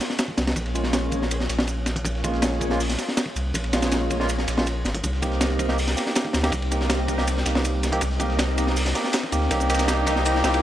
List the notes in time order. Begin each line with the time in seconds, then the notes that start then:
0.00 snare, ride, shaker
0.10 snare
0.19 snare, ride, shaker
0.28 kick
0.37 C2, snare, ride, shaker
0.47 snare, ride
0.56 A#1, kick, ride, shaker
0.66 snare, ride
0.75 G#3 A#3 C#4 F4, ride, shaker
0.84 snare
0.93 snare, ride, shaker
1.12 kick, ride, shaker
1.22 snare
1.31 ride, shaker
1.40 snare
1.49 A#1, snare, ride, shaker
1.59 snare
1.67 ride, shaker
1.86 snare, ride, shaker
1.96 kick, closed hi-hat
2.04 A#1, kick, ride, shaker
2.15 snare
2.24 G#3 A#3 C#4 F4, kick, ride, shaker
2.34 snare
2.42 snare, ride, shaker
2.52 snare
2.61 kick, ride, shaker
2.70 G#3 A#3 C#4 F4, snare
2.80 open hi-hat, shaker
2.90 snare, closed hi-hat
2.98 snare, ride, shaker
3.08 snare
3.17 snare, ride, shaker
3.26 kick
3.36 C2, ride, shaker
3.54 A#1, kick, ride, shaker
3.64 snare, ride
3.73 G#3 A#3 C#4 F4, snare, ride, shaker
3.82 snare, ride, shaker
3.92 snare, ride, shaker
4.10 kick, ride, shaker
4.20 G#3 A#3 C#4 F4, snare
4.29 ride, shaker
4.38 snare
4.48 A#1, snare, ride, shaker
4.57 G#3 A#3 C#4 F4, snare
4.66 ride, shaker
4.85 G#1, snare, ride, shaker
4.95 kick, closed hi-hat
5.03 C2, kick, ride, riser, shaker
5.13 snare
5.22 A#3 C4 D#4 G4, kick, ride, shaker
5.32 snare
5.41 snare, ride, shaker
5.50 snare
5.59 kick, ride, shaker
5.68 A#3 C4 D#4 G4, snare
5.78 open hi-hat, shaker
5.87 snare, closed hi-hat
5.97 A#3 C4 D#4 G4, snare, ride, shaker
6.06 snare
6.16 snare, ride, shaker
6.25 kick
6.33 D2, snare, ride, shaker
6.43 A#3 C4 D#4 G4, snare, ride
6.52 C2, kick, ride, shaker
6.62 snare, ride
6.71 A#3 C4 D#4 G4, ride, shaker
6.81 snare
6.90 snare, ride, shaker
7.08 kick, ride, shaker
7.18 A#3 C4 D#4 G4, snare
7.27 ride, shaker
7.37 snare
7.46 C2 A#3 C4 D#4 G4, snare, ride, shaker
7.55 snare
7.64 ride, shaker
7.83 snare, ride, shaker
7.92 A#3 C4 D#4 G4, kick, closed hi-hat
8.01 C2, kick, ride, shaker
8.11 snare
8.20 A#3 C4 D#4 G4, kick, ride, shaker
8.30 snare
8.39 snare, ride, shaker
8.48 snare
8.58 A#3 C4 D#4 G4, ride, shaker
8.67 snare
8.76 open hi-hat, shaker
8.86 snare, closed hi-hat
8.95 A#3 C4 D#4 G4, snare, ride, shaker
9.04 snare
9.13 snare, ride, shaker
9.23 kick
9.32 D2 A#3 C4 D#4 G4, ride, shaker
9.42 snare
9.51 C2 A#3 C4 D#4 G4, kick, ride, shaker
9.60 ride, shaker
9.70 A#3 C4 D#4 G4, snare, ride, shaker
9.75 snare, shaker
9.79 snare, shaker
9.88 A#3 C4 D#4 G4, snare, ride, shaker
10.07 A#3 C4 D#4 G4, kick, snare, ride, shaker
10.16 snare
10.25 A#3 C4 D#4 G4, ride, shaker
10.35 snare
10.44 C2 A#3 C4 D#4 G4, snare, shaker
10.54 ride